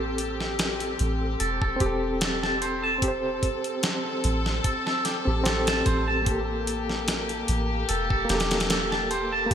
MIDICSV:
0, 0, Header, 1, 7, 480
1, 0, Start_track
1, 0, Tempo, 810811
1, 1787, Time_signature, 4, 2, 24, 8
1, 5648, End_track
2, 0, Start_track
2, 0, Title_t, "Clean electric guitar"
2, 0, Program_c, 0, 27
2, 829, Note_on_c, 0, 69, 91
2, 943, Note_off_c, 0, 69, 0
2, 957, Note_on_c, 0, 69, 100
2, 1057, Note_off_c, 0, 69, 0
2, 1069, Note_on_c, 0, 67, 74
2, 1190, Note_off_c, 0, 67, 0
2, 1309, Note_on_c, 0, 69, 82
2, 1424, Note_off_c, 0, 69, 0
2, 1438, Note_on_c, 0, 81, 77
2, 1538, Note_off_c, 0, 81, 0
2, 1550, Note_on_c, 0, 72, 105
2, 1670, Note_off_c, 0, 72, 0
2, 1678, Note_on_c, 0, 81, 103
2, 1783, Note_off_c, 0, 81, 0
2, 2749, Note_on_c, 0, 69, 90
2, 2864, Note_off_c, 0, 69, 0
2, 2880, Note_on_c, 0, 69, 109
2, 2978, Note_off_c, 0, 69, 0
2, 2990, Note_on_c, 0, 67, 71
2, 3110, Note_off_c, 0, 67, 0
2, 3231, Note_on_c, 0, 69, 78
2, 3344, Note_off_c, 0, 69, 0
2, 3358, Note_on_c, 0, 81, 80
2, 3457, Note_off_c, 0, 81, 0
2, 3470, Note_on_c, 0, 72, 102
2, 3590, Note_off_c, 0, 72, 0
2, 3597, Note_on_c, 0, 81, 109
2, 3703, Note_off_c, 0, 81, 0
2, 4671, Note_on_c, 0, 69, 95
2, 4784, Note_off_c, 0, 69, 0
2, 4797, Note_on_c, 0, 69, 103
2, 4897, Note_off_c, 0, 69, 0
2, 4910, Note_on_c, 0, 67, 77
2, 5031, Note_off_c, 0, 67, 0
2, 5150, Note_on_c, 0, 69, 84
2, 5264, Note_off_c, 0, 69, 0
2, 5279, Note_on_c, 0, 81, 77
2, 5378, Note_off_c, 0, 81, 0
2, 5392, Note_on_c, 0, 72, 110
2, 5511, Note_off_c, 0, 72, 0
2, 5520, Note_on_c, 0, 81, 112
2, 5624, Note_off_c, 0, 81, 0
2, 5648, End_track
3, 0, Start_track
3, 0, Title_t, "Synth texture"
3, 0, Program_c, 1, 99
3, 0, Note_on_c, 1, 69, 84
3, 5648, Note_off_c, 1, 69, 0
3, 5648, End_track
4, 0, Start_track
4, 0, Title_t, "Reed electric piano"
4, 0, Program_c, 2, 4
4, 0, Control_c, 2, 64, 127
4, 0, Note_on_c, 2, 60, 74
4, 0, Note_on_c, 2, 67, 69
4, 0, Note_on_c, 2, 69, 81
4, 1028, Note_off_c, 2, 60, 0
4, 1043, Note_off_c, 2, 67, 0
4, 1043, Note_on_c, 2, 60, 99
4, 1057, Note_off_c, 2, 69, 0
4, 1072, Note_on_c, 2, 67, 94
4, 1102, Note_on_c, 2, 69, 109
4, 1749, Note_off_c, 2, 60, 0
4, 1763, Note_off_c, 2, 67, 0
4, 1765, Note_on_c, 2, 60, 89
4, 1778, Note_off_c, 2, 69, 0
4, 1796, Note_on_c, 2, 67, 81
4, 1824, Note_on_c, 2, 72, 101
4, 2949, Note_off_c, 2, 60, 0
4, 2965, Note_off_c, 2, 67, 0
4, 2979, Note_off_c, 2, 72, 0
4, 3109, Note_on_c, 2, 60, 84
4, 3123, Note_on_c, 2, 67, 77
4, 3140, Note_on_c, 2, 69, 98
4, 3197, Note_off_c, 2, 60, 0
4, 3204, Note_off_c, 2, 67, 0
4, 3212, Note_off_c, 2, 69, 0
4, 3218, Note_on_c, 2, 60, 88
4, 3233, Note_on_c, 2, 67, 80
4, 3248, Note_on_c, 2, 69, 90
4, 3676, Note_off_c, 2, 60, 0
4, 3683, Note_off_c, 2, 67, 0
4, 3683, Note_on_c, 2, 58, 77
4, 3691, Note_off_c, 2, 69, 0
4, 3712, Note_on_c, 2, 67, 71
4, 3715, Control_c, 2, 64, 0
4, 3741, Note_on_c, 2, 69, 81
4, 3823, Control_c, 2, 64, 127
4, 4868, Note_off_c, 2, 58, 0
4, 4883, Note_off_c, 2, 67, 0
4, 4884, Note_on_c, 2, 58, 100
4, 4897, Note_off_c, 2, 69, 0
4, 4912, Note_on_c, 2, 67, 98
4, 4941, Note_on_c, 2, 69, 113
4, 5589, Note_off_c, 2, 58, 0
4, 5601, Note_on_c, 2, 58, 91
4, 5603, Note_off_c, 2, 67, 0
4, 5617, Note_off_c, 2, 69, 0
4, 5630, Note_on_c, 2, 67, 86
4, 5648, Note_off_c, 2, 58, 0
4, 5648, Note_off_c, 2, 67, 0
4, 5648, End_track
5, 0, Start_track
5, 0, Title_t, "String section"
5, 0, Program_c, 3, 48
5, 0, Note_on_c, 3, 60, 73
5, 0, Note_on_c, 3, 67, 84
5, 1764, Note_off_c, 3, 67, 0
5, 1785, Note_on_c, 3, 69, 94
5, 3684, Note_off_c, 3, 60, 0
5, 3687, Note_off_c, 3, 69, 0
5, 3707, Note_on_c, 3, 58, 79
5, 3707, Note_on_c, 3, 67, 86
5, 5648, Note_off_c, 3, 58, 0
5, 5648, Note_off_c, 3, 67, 0
5, 5648, End_track
6, 0, Start_track
6, 0, Title_t, "808-style bass"
6, 0, Program_c, 4, 38
6, 0, Note_on_c, 4, 33, 97
6, 568, Note_off_c, 4, 33, 0
6, 594, Note_on_c, 4, 33, 101
6, 804, Note_off_c, 4, 33, 0
6, 833, Note_on_c, 4, 28, 82
6, 1043, Note_off_c, 4, 28, 0
6, 1071, Note_on_c, 4, 28, 88
6, 2008, Note_off_c, 4, 28, 0
6, 2514, Note_on_c, 4, 33, 100
6, 2724, Note_off_c, 4, 33, 0
6, 3120, Note_on_c, 4, 33, 93
6, 3448, Note_off_c, 4, 33, 0
6, 3472, Note_on_c, 4, 33, 106
6, 4408, Note_off_c, 4, 33, 0
6, 4433, Note_on_c, 4, 33, 102
6, 4643, Note_off_c, 4, 33, 0
6, 4676, Note_on_c, 4, 28, 84
6, 4885, Note_off_c, 4, 28, 0
6, 4913, Note_on_c, 4, 28, 87
6, 5648, Note_off_c, 4, 28, 0
6, 5648, End_track
7, 0, Start_track
7, 0, Title_t, "Drums"
7, 108, Note_on_c, 9, 42, 68
7, 167, Note_off_c, 9, 42, 0
7, 240, Note_on_c, 9, 38, 47
7, 299, Note_off_c, 9, 38, 0
7, 349, Note_on_c, 9, 42, 80
7, 352, Note_on_c, 9, 38, 112
7, 408, Note_off_c, 9, 42, 0
7, 411, Note_off_c, 9, 38, 0
7, 476, Note_on_c, 9, 42, 46
7, 535, Note_off_c, 9, 42, 0
7, 588, Note_on_c, 9, 42, 67
7, 647, Note_off_c, 9, 42, 0
7, 829, Note_on_c, 9, 42, 88
7, 888, Note_off_c, 9, 42, 0
7, 957, Note_on_c, 9, 36, 104
7, 1016, Note_off_c, 9, 36, 0
7, 1067, Note_on_c, 9, 42, 69
7, 1068, Note_on_c, 9, 36, 98
7, 1127, Note_off_c, 9, 42, 0
7, 1128, Note_off_c, 9, 36, 0
7, 1308, Note_on_c, 9, 42, 87
7, 1312, Note_on_c, 9, 38, 127
7, 1368, Note_off_c, 9, 42, 0
7, 1371, Note_off_c, 9, 38, 0
7, 1441, Note_on_c, 9, 38, 49
7, 1501, Note_off_c, 9, 38, 0
7, 1550, Note_on_c, 9, 42, 67
7, 1609, Note_off_c, 9, 42, 0
7, 1789, Note_on_c, 9, 36, 106
7, 1789, Note_on_c, 9, 42, 89
7, 1848, Note_off_c, 9, 36, 0
7, 1848, Note_off_c, 9, 42, 0
7, 2029, Note_on_c, 9, 36, 102
7, 2029, Note_on_c, 9, 42, 70
7, 2088, Note_off_c, 9, 36, 0
7, 2088, Note_off_c, 9, 42, 0
7, 2157, Note_on_c, 9, 42, 43
7, 2216, Note_off_c, 9, 42, 0
7, 2267, Note_on_c, 9, 42, 82
7, 2271, Note_on_c, 9, 38, 117
7, 2326, Note_off_c, 9, 42, 0
7, 2330, Note_off_c, 9, 38, 0
7, 2509, Note_on_c, 9, 42, 67
7, 2568, Note_off_c, 9, 42, 0
7, 2640, Note_on_c, 9, 38, 55
7, 2700, Note_off_c, 9, 38, 0
7, 2749, Note_on_c, 9, 36, 112
7, 2749, Note_on_c, 9, 42, 92
7, 2808, Note_off_c, 9, 42, 0
7, 2809, Note_off_c, 9, 36, 0
7, 2882, Note_on_c, 9, 38, 48
7, 2941, Note_off_c, 9, 38, 0
7, 2989, Note_on_c, 9, 42, 66
7, 2993, Note_on_c, 9, 38, 54
7, 3048, Note_off_c, 9, 42, 0
7, 3052, Note_off_c, 9, 38, 0
7, 3229, Note_on_c, 9, 42, 86
7, 3233, Note_on_c, 9, 38, 109
7, 3288, Note_off_c, 9, 42, 0
7, 3292, Note_off_c, 9, 38, 0
7, 3358, Note_on_c, 9, 42, 82
7, 3361, Note_on_c, 9, 38, 111
7, 3417, Note_off_c, 9, 42, 0
7, 3420, Note_off_c, 9, 38, 0
7, 3468, Note_on_c, 9, 42, 70
7, 3469, Note_on_c, 9, 36, 98
7, 3527, Note_off_c, 9, 42, 0
7, 3528, Note_off_c, 9, 36, 0
7, 3708, Note_on_c, 9, 42, 89
7, 3709, Note_on_c, 9, 36, 115
7, 3767, Note_off_c, 9, 42, 0
7, 3769, Note_off_c, 9, 36, 0
7, 3951, Note_on_c, 9, 42, 74
7, 4010, Note_off_c, 9, 42, 0
7, 4082, Note_on_c, 9, 38, 42
7, 4141, Note_off_c, 9, 38, 0
7, 4189, Note_on_c, 9, 42, 84
7, 4193, Note_on_c, 9, 38, 104
7, 4249, Note_off_c, 9, 42, 0
7, 4252, Note_off_c, 9, 38, 0
7, 4317, Note_on_c, 9, 42, 42
7, 4377, Note_off_c, 9, 42, 0
7, 4429, Note_on_c, 9, 42, 71
7, 4488, Note_off_c, 9, 42, 0
7, 4669, Note_on_c, 9, 42, 89
7, 4728, Note_off_c, 9, 42, 0
7, 4798, Note_on_c, 9, 36, 110
7, 4857, Note_off_c, 9, 36, 0
7, 4910, Note_on_c, 9, 42, 67
7, 4913, Note_on_c, 9, 38, 86
7, 4969, Note_off_c, 9, 42, 0
7, 4972, Note_off_c, 9, 38, 0
7, 4973, Note_on_c, 9, 42, 67
7, 4976, Note_on_c, 9, 38, 85
7, 5032, Note_off_c, 9, 42, 0
7, 5036, Note_off_c, 9, 38, 0
7, 5037, Note_on_c, 9, 42, 65
7, 5041, Note_on_c, 9, 38, 92
7, 5093, Note_off_c, 9, 42, 0
7, 5093, Note_on_c, 9, 42, 70
7, 5096, Note_off_c, 9, 38, 0
7, 5096, Note_on_c, 9, 38, 89
7, 5149, Note_off_c, 9, 42, 0
7, 5149, Note_on_c, 9, 42, 93
7, 5153, Note_off_c, 9, 38, 0
7, 5153, Note_on_c, 9, 38, 127
7, 5209, Note_off_c, 9, 42, 0
7, 5212, Note_off_c, 9, 38, 0
7, 5283, Note_on_c, 9, 38, 49
7, 5342, Note_off_c, 9, 38, 0
7, 5392, Note_on_c, 9, 42, 67
7, 5451, Note_off_c, 9, 42, 0
7, 5630, Note_on_c, 9, 42, 91
7, 5648, Note_off_c, 9, 42, 0
7, 5648, End_track
0, 0, End_of_file